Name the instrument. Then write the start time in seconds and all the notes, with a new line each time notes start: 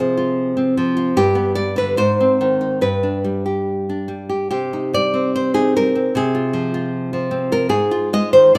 nylon-string guitar
Already playing: C3 C4 G#4
0.00 F3
0.18 F4
0.57 C4
0.77 F3
0.97 F4
1.17 G2 G4
1.35 B3
1.55 G3 D5
1.76 D3 B4
1.97 G#2 C5
2.21 C4
2.41 D#3
2.61 D#4
2.81 G2 B4
3.03 D4
3.24 G3
3.46 G4
3.90 D4
4.08 G3
4.29 G4
4.51 C3 G4
4.73 D#4
4.93 G3 D5
5.14 C4
5.36 C5
5.54 D#4 G#4
5.76 G3 A#4
5.95 C4
6.15 C3 G#4
6.35 F4
6.53 F3
6.74 F4
7.13 F3
7.31 C4
7.52 F4 A#4
7.69 G#2 G#4
7.91 F4
8.13 G#3 D#5
8.33 D#3 C5
8.55 A#2